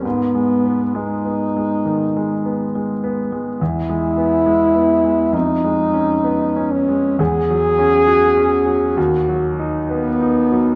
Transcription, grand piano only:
\new Staff \with { instrumentName = "Grand piano" } { \clef bass \time 4/4 \key gis \dorian \tempo 4 = 66 \tuplet 3/2 { gis,8 gis8 b8 gis8 b8 gis8 dis8 gis8 b8 gis8 b8 gis8 } | \key b \major \tuplet 3/2 { e,8 gis8 b8 gis8 b8 gis8 eis,8 gis8 cis'8 b8 cis'8 gis8 } | \tuplet 3/2 { e,8 fis8 cis'8 fis'8 cis'8 fis8 dis,8 fis8 dis'8 b8 dis'8 fis8 } | }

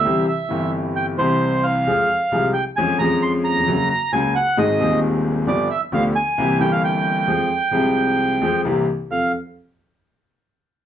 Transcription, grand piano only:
\new Staff \with { instrumentName = "Grand piano" } { \clef bass \time 4/4 \key f \minor \tempo 4 = 133 << { <c, c e g c' g'>8 r8 <g,, g, e g c' g'>4. <c, c e g c' g'>4. | <f, f aes c' aes'>8 r8 <c, c f aes c' aes'>8 r8 <f, f aes des' aes'>8 <f, f aes des' aes'>4. | <ges, des ges bes ges'>8 r8 <des, des ges bes ges'>8 r8 <aes,, aes, ees aes c' aes'>8 <ees,, ees, ees aes c' aes'>4. | <g,, g, f b d' g'>8 r8 <d, d f b d' g'>8 r8 <c, c e bes c' g'>8 <g,, g, e bes c' g'>4. |
<f, f aes c' aes'>8 r8 <c, c f aes c' aes'>4. <f, f aes c' aes'>8 <c, c e bes c' g'>8 r8 | <f, c' f' a'>8 r2. r8 | } \\ { r1 | r2. r8 r32 ees,32 e,32 f,32 | r1 | r1 |
r1 | r1 | } >> }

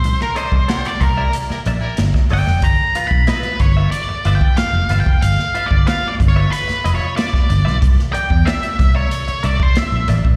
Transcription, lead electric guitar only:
\new Staff \with { instrumentName = "Lead electric guitar" } { \time 4/4 \key c \major \tempo 4 = 93 c''16 bes'16 c''8. d''16 bes'8 r4. g''8 | \tuplet 3/2 { bes''4 b''8 } b'8 cis''8 \tuplet 3/2 { d''4 g''8 f''4 g''8 } | \tuplet 3/2 { f''4 d''8 f''8 d''8 cis''8 b'4 cis''8 } d''4 | r8 g''8 e''8. cis''8. d''16 c''16 e''8 r8 | }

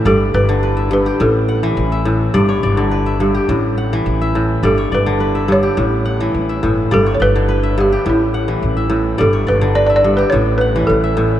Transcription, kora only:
<<
  \new Staff \with { instrumentName = "Kora" } { \time 4/4 \key g \lydian \tempo 4 = 105 d''8 d''8 b'16 e''8 g'8 r16 fis''8. e''8. | d''16 cis''16 d''8 b'16 e''8 g'8 r16 fis''8. e''8. | d''16 cis''16 d''8 b'16 e''8 g'8 r16 fis''8. e''8. | d''16 cis''16 d''8 b'16 e''8 g'8 r16 fis''8. e''8. |
d''16 cis''16 d''8 b'16 e''8 g'8 r16 fis''8. e''8. | }
  \new Staff \with { instrumentName = "Kora" } { \clef bass \time 4/4 \key g \lydian g,8 r16 d8 r16 g,8 a,8 r16 e8 r16 a,8 | g,8 r16 d8 r16 g,8 a,8 r16 e8 r16 a,8 | g,8 r16 d8 r16 g,8 a,8 r16 e8 r16 a,8 | g,8 r16 d8 r16 g,8 a,8 r16 e8 r16 a,8 |
g,8 r16 d8 r16 g,8 a,8 r16 e8 r16 a,8 | }
>>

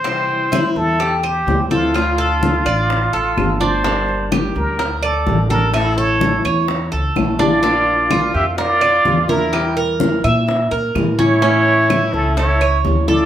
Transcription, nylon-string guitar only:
\new Staff \with { instrumentName = "Nylon-string guitar" } { \time 4/4 \key c \mixolydian \tempo 4 = 127 <c e g c' e'>4 <e g c' e'>4 r4 <e g c' e'>8 <e g c' e'>8 | <d a d' f'>4 <d a d' f'>4 r4 <d a d' f'>8 <a d' f'>8 | <d g bes d' g'>4 <g bes d' g'>4 r4 <g bes d' g'>8 <g bes d' g'>8 | <e a cis' e'>4 <e a cis' e'>4 r4 <e a cis' e'>8 <a cis' e'>8 |
<f bes d' f'>4 <f bes d' f'>4 r4 <f bes d' f'>8 <bes d' f'>8 | <e g e'>4 <e g e'>4 r4 <e g e'>8 <g e'>8 | <e a cis' e'>4 <e a cis' e'>4 r4 <e a cis' e'>8 <a cis' e'>8 | }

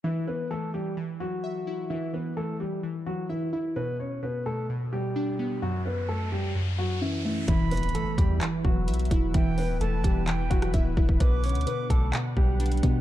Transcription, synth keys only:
\new Staff \with { instrumentName = "Synth keys" } { \clef bass \time 4/4 \key e \dorian \tempo 4 = 129 e8 e8 e8 e8 e8 e8 e''8 e'8 | e8 e8 e8 e8 e8 e8 e''8 e'8 | b,8 b,8 b,8 b,8 b,8 b,8 d'8 b8 | fis,8 fis,8 fis,8 fis,8 fis,8 fis,8 cis'8 a8 |
e8 e8 e8 e8 e8 e8 e''8 e'8 | e8 e8 e8 e8 e8 e8 e''8 e'8 | b,8 b,8 b,8 b,8 b,8 b,8 d'8 b8 | }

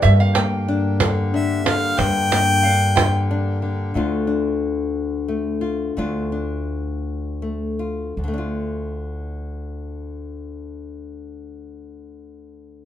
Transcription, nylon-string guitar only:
\new Staff \with { instrumentName = "Nylon-string guitar" } { \time 6/8 \key d \minor \tempo 4. = 58 << { g8 bes8 d'4 d'4 | r8 bes8 d'4 d'4 | <a d' f'>8 d'4. a8 f'8 | <a d' f'>8 d'4. a8 f'8 |
<d a d' f'>2.~ | <d a d' f'>2. | } \\ { g,4. d4 d8 | g,4. d4 d8 | d,2. | d,2. |
d,2.~ | d,2. | } >> }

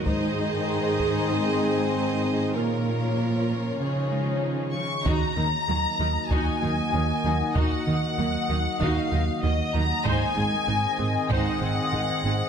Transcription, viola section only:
\new Staff \with { instrumentName = "Viola section" } { \time 4/4 \key ees \dorian \tempo 4 = 96 << { aes'1 | f'2.~ f'8 r8 | ges'8 ees'8 bes8 ees'8 ges'8 ees'8 bes8 ees'8 | ges'8 ees'8 bes8 ees'8 ges'8 ees'8 bes8 ees'8 |
c''8 aes'8 ees'8 aes'8 c''8 aes'8 ees'8 aes'8 | } \\ { ees'1 | f'2 ees'4. r8 | ees'8 bes8 ges8 bes8 ees'8 bes8 ges8 bes8 | ees'8 bes8 ges8 bes8 ees'8 bes8 ges8 bes8 |
ees'8 c'8 aes8 c'8 ees'8 c'8 aes8 c'8 | } >> }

